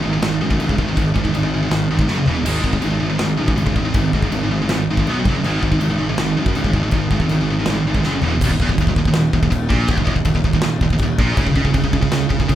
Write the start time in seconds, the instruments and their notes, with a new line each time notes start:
0.03 fingered electric bass G#1, distorted electric guitar G#2 D#3
0.13 distorted electric guitar G#2 D#3
0.21 fingered electric bass G#1, distorted electric guitar G#2 D#3, snare, china
0.41 fingered electric bass F#2, distorted electric guitar G#2 D#3
0.50 distorted electric guitar G#2 D#3, kick
0.59 fingered electric bass C#2, distorted electric guitar G#2 D#3, china
0.69 distorted electric guitar G#2 D#3, kick
0.78 fingered electric bass G#1, distorted electric guitar G#2 D#3, kick
0.88 distorted electric guitar G#2 D#3
0.96 fingered electric bass G#1, distorted electric guitar G#2 D#3, kick, china
1.14 fingered electric bass G#1, distorted electric guitar G#2 D#3, kick
1.24 distorted electric guitar G#2 D#3, kick
1.34 fingered electric bass G#1, distorted electric guitar G#2 D#3, china
1.43 distorted electric guitar G#2 D#3
1.54 distorted electric guitar G#2 D#3
1.63 distorted electric guitar G#2 D#3
1.71 fingered electric bass G#1, distorted electric guitar G#2 D#3, snare, china
1.90 fingered electric bass G#1, distorted electric guitar G#2 D#3
1.99 distorted electric guitar G#2 D#3, kick
2.08 fingered electric bass F#1, distorted electric guitar F#2 C#3 F#3, snare
2.19 distorted electric guitar F#2 C#3
2.26 fingered electric bass E1, distorted electric guitar E2 B2 E3, floor tom
2.37 distorted electric guitar E2 B2
2.45 fingered electric bass G#1, distorted electric guitar G#2 D#3 G#3, crash, china
2.63 fingered electric bass G#1, distorted electric guitar G#2 D#3, kick
2.73 distorted electric guitar G#2 D#3, kick
2.82 fingered electric bass G#1, distorted electric guitar G#2 D#3, china
2.90 distorted electric guitar G#2 D#3
3.00 fingered electric bass G#1, distorted electric guitar G#2 D#3
3.10 distorted electric guitar G#2 D#3
3.18 fingered electric bass G#1, distorted electric guitar G#2 D#3, snare, china
3.37 fingered electric bass F#2, distorted electric guitar G#2 D#3
3.46 distorted electric guitar G#2 D#3, kick
3.56 fingered electric bass C#2, distorted electric guitar G#2 D#3, china
3.66 distorted electric guitar G#2 D#3, kick
3.75 fingered electric bass G#1, distorted electric guitar G#2 D#3, kick
3.85 distorted electric guitar G#2 D#3
3.94 fingered electric bass G#1, distorted electric guitar G#2 D#3, kick, china
4.13 fingered electric bass G#1, distorted electric guitar G#2 D#3, kick
4.22 distorted electric guitar G#2 D#3, kick
4.32 fingered electric bass G#1, distorted electric guitar G#2 D#3, china
4.43 distorted electric guitar G#2 D#3
4.51 distorted electric guitar G#2 D#3
4.62 distorted electric guitar G#2 D#3
4.69 fingered electric bass G#1, distorted electric guitar G#2 D#3, snare, china
4.88 fingered electric bass G#1, distorted electric guitar G#2 D#3
4.97 distorted electric guitar G#2 D#3, kick
5.07 fingered electric bass B1, distorted electric guitar B2 F#3 B3, china
5.19 distorted electric guitar B2 F#3
5.25 fingered electric bass F#1, distorted electric guitar F#2 C#3, kick
5.29 distorted electric guitar F#3
5.36 distorted electric guitar F#2 C#3
5.43 fingered electric bass G#1, distorted electric guitar G#2 D#3 G#3, china
5.62 fingered electric bass G#1, distorted electric guitar G#2 D#3, kick
5.71 distorted electric guitar G#2 D#3, kick
5.80 fingered electric bass G#1, distorted electric guitar G#2 D#3, china
5.90 distorted electric guitar G#2 D#3
5.99 fingered electric bass G#1, distorted electric guitar G#2 D#3
6.09 distorted electric guitar G#2 D#3
6.18 fingered electric bass G#1, distorted electric guitar G#2 D#3, snare, china
6.37 fingered electric bass F#2, distorted electric guitar G#2 D#3
6.46 distorted electric guitar G#2 D#3, kick
6.55 fingered electric bass C#2, distorted electric guitar G#2 D#3, china
6.64 distorted electric guitar G#2 D#3, kick
6.73 fingered electric bass G#1, distorted electric guitar G#2 D#3, kick
6.83 distorted electric guitar G#2 D#3
6.91 fingered electric bass G#1, distorted electric guitar G#2 D#3, kick, china
7.11 fingered electric bass G#1, distorted electric guitar G#2 D#3, kick
7.20 distorted electric guitar G#2 D#3, kick
7.29 fingered electric bass G#1, distorted electric guitar G#2 D#3, china
7.41 distorted electric guitar G#2 D#3
7.50 distorted electric guitar G#2 D#3
7.60 distorted electric guitar G#2 D#3
7.66 fingered electric bass G#1, snare, china
7.70 distorted electric guitar G#2 D#3
7.85 fingered electric bass G#1, distorted electric guitar G#2 D#3
7.95 distorted electric guitar G#2 D#3, kick
8.03 fingered electric bass F#1, distorted electric guitar F#2 C#3 F#3, snare
8.15 distorted electric guitar F#2 C#3
8.22 fingered electric bass E1, distorted electric guitar E2 B2 E3, floor tom
8.33 distorted electric guitar E2 B2
8.41 fingered electric bass D#1, distorted electric guitar D#2, kick, crash, china
8.50 fingered electric bass D#1, distorted electric guitar D#2, kick
8.60 fingered electric bass E1, distorted electric guitar E2, kick
8.69 fingered electric bass D#1, distorted electric guitar D#2, kick
8.78 fingered electric bass D#1, distorted electric guitar D#2, kick, china
8.87 fingered electric bass D#1, distorted electric guitar D#2, kick
8.96 fingered electric bass D#1, distorted electric guitar D#2, kick
9.05 fingered electric bass D#1, distorted electric guitar D#2, kick
9.14 fingered electric bass D#1, distorted electric guitar D#2, snare, china
9.33 fingered electric bass D#1, distorted electric guitar D#2, kick
9.42 fingered electric bass D#1, distorted electric guitar D#2, kick
9.50 fingered electric bass D#1, distorted electric guitar D#2, kick, china
9.69 fingered electric bass A#1, distorted electric guitar A#2, kick
9.88 fingered electric bass D#1, distorted electric guitar D#2, kick, china
9.98 fingered electric bass D#1, distorted electric guitar D#2, kick
10.05 fingered electric bass E1, distorted electric guitar E2, kick
10.15 fingered electric bass D#1, distorted electric guitar D#2, kick
10.25 fingered electric bass D#1, distorted electric guitar D#2, kick, china
10.35 fingered electric bass D#1, distorted electric guitar D#2, kick
10.44 fingered electric bass D#1, distorted electric guitar D#2, kick
10.53 fingered electric bass D#1, distorted electric guitar D#2, kick
10.62 fingered electric bass D#1, distorted electric guitar D#2, snare, china
10.81 fingered electric bass D#1, distorted electric guitar D#2, kick
10.90 fingered electric bass D#1, distorted electric guitar D#2, kick
10.98 fingered electric bass D#1, kick, china
11.03 distorted electric guitar D#2
11.18 fingered electric bass A#1, distorted electric guitar A#2, kick
11.37 fingered electric bass C#2, distorted electric guitar C#3, kick, china
11.46 fingered electric bass C#2, distorted electric guitar C#3, kick
11.56 fingered electric bass C#2, distorted electric guitar C#3, kick
11.65 fingered electric bass C#2, distorted electric guitar C#3, kick
11.74 fingered electric bass C#2, distorted electric guitar C#3, kick, china
11.83 fingered electric bass C#2, distorted electric guitar C#3, kick
11.93 fingered electric bass C#2, distorted electric guitar C#3, kick
12.01 fingered electric bass C#2, distorted electric guitar C#3, kick
12.12 fingered electric bass C#2, distorted electric guitar C#3, snare, china
12.29 fingered electric bass C#2, distorted electric guitar C#3, kick
12.40 fingered electric bass C#2, distorted electric guitar C#3, kick
12.48 fingered electric bass C#2, distorted electric guitar C#3, kick, china